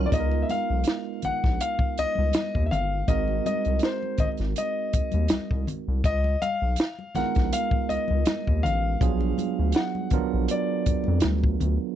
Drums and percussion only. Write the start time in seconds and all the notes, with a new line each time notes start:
0.12 kick, closed hi-hat, muted conga
0.31 muted conga
0.49 closed hi-hat, high conga
0.84 snare, closed hi-hat, muted conga
1.22 closed hi-hat, low conga
1.44 kick, snare
1.60 closed hi-hat
1.79 kick, muted conga
1.98 closed hi-hat
2.15 high conga
2.33 snare, closed hi-hat, high conga
2.55 kick
2.72 closed hi-hat, low conga
3.08 kick, closed hi-hat
3.28 muted conga
3.46 closed hi-hat, high conga
3.65 closed hi-hat
3.79 snare, closed hi-hat
4.03 muted conga
4.18 kick, closed hi-hat, low conga
4.37 snare, closed hi-hat
4.56 closed hi-hat, muted conga
4.93 kick, closed hi-hat
5.11 closed hi-hat, high conga
5.28 snare, closed hi-hat, muted conga, high conga
5.51 kick
5.67 closed hi-hat, low conga
6.04 kick, closed hi-hat, muted conga
6.24 muted conga
6.42 closed hi-hat, high conga
6.76 snare, closed hi-hat, muted conga
6.99 muted conga
7.15 snare, closed hi-hat, low conga
7.35 kick, snare, closed hi-hat
7.53 closed hi-hat, muted conga
7.71 kick, muted conga
7.90 closed hi-hat
8.08 high conga
8.25 snare, closed hi-hat, high conga
8.47 kick
8.64 closed hi-hat, low conga
9.01 kick, closed hi-hat, muted conga
9.20 muted conga
9.38 closed hi-hat, high conga
9.72 snare, closed hi-hat
9.95 high conga
10.10 kick, closed hi-hat, low conga
10.48 closed hi-hat, muted conga
10.86 kick, closed hi-hat
11.04 high conga
11.20 snare, closed hi-hat, muted conga, high conga
11.44 kick
11.60 closed hi-hat, low conga